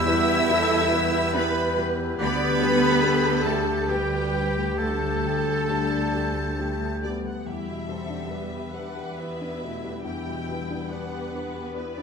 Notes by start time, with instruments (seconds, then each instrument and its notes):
Already playing: double bass section E2, grand piano E2, harp E3 G3 E4 E5 B5, french horn section G3 E4, cello section E4, clarinet E4, oboe E5, violin section E5 E6, flute G6
0.07 grand piano G3 E4 B4, viola section B4, harp B4
0.50 grand piano G3 E4 B4, viola section A4, harp E5
0.73 harp B5
0.92 grand piano G3 E4 B4, viola section B4
1.15 harp B5
1.35 grand piano G3 E4 B4, cello section B3, oboe B4, violin section B4 B5, harp E5
1.56 harp G4
1.77 grand piano G3 E4 B4
2.00 harp E4
2.19 double bass section D2, grand piano D2, harp D3, french horn section G3 G4, cello section B3, clarinet G4, violin section B4 B5, oboe B4, viola section D5, flute G6
2.41 harp D4
2.62 grand piano G3 G4, viola section A4
2.82 harp G3
3.04 grand piano G3 G4
3.25 harp A5
3.46 grand piano G3 G4, cello section A3, harp G4, oboe A4, violin section A4 A5
3.89 cello section G3, grand piano G3 G4, harp G4, violin section G4 G5, oboe G4, viola section B4
4.11 harp G3
4.34 grand piano G3 G4
4.55 harp G3
4.78 grand piano D2, harp D3, cello section A3, oboe A4, viola section A4, violin section A4 A5
5.01 harp D4
5.24 grand piano G3 G4, harp G4
5.46 harp G3
5.68 grand piano G3 G4, french horn section D4, harp G4
6.14 grand piano G3 G4, harp G4
6.58 grand piano G3 G4, french horn section A3, harp G4
6.80 harp G3
7.02 grand piano G3 G4, harp G4, violin section D5
7.06 french horn section B3
7.24 harp G3, violin section F#5
7.45 grand piano E2, cello section E2, harp E3, viola section G3 E4, violin section G4 E5
7.66 grand piano B2, harp G3
7.87 grand piano G3, viola section C4, violin section A4, harp B4
8.10 grand piano D4, harp G4
8.30 viola section B3, violin section B4, grand piano B4, harp D5
8.53 grand piano G4, harp B5
8.74 viola section D4, grand piano B4, harp E5, violin section F#5
8.97 grand piano G4, harp B5
9.18 viola section B3 E4, grand piano B4, harp D5, violin section E5
9.40 grand piano D4, harp G4
9.61 grand piano B2, viola section A3, harp B4
9.83 grand piano G3, harp D4
10.04 grand piano E2, harp E3, viola section G3 E4, violin section G4 G5
10.26 grand piano B2, harp G3
10.46 grand piano G3, viola section B3, violin section B4, harp B4
10.69 grand piano D4, harp G4
10.89 viola section D4, grand piano B4, harp D5, violin section F#5
11.11 grand piano G4, harp B5
11.32 viola section D4, grand piano B4
11.53 grand piano G4, harp B5
11.75 viola section E4, violin section B4, grand piano B4, harp D5
11.95 grand piano D4, harp G4, violin section D5